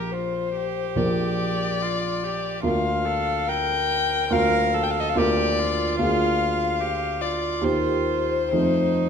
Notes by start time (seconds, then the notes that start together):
Already playing: A#1 A#3 F4 G4 A#4
0.12 F4 C5
0.57 G4
0.95 A#1 A#3 F4 A#4 D5
1.82 F4
2.24 G4
2.63 D2 A#3 F4 A#4 F5
3.05 A4
3.48 A#4 G5
4.30 D2 A#3 F4 A#4 F5
4.74 A4
4.83 G5
4.91 F5
5.00 D#5
5.10 F5
5.15 D2 A#3 F4 G4 A#4 D5
5.60 F4
5.99 D2 A#3 F4 G#4 F5
6.81 G4
7.21 F4 D5
7.61 D#2 A#3 D#4 G4 C5
8.53 F2 A3 D#4 F4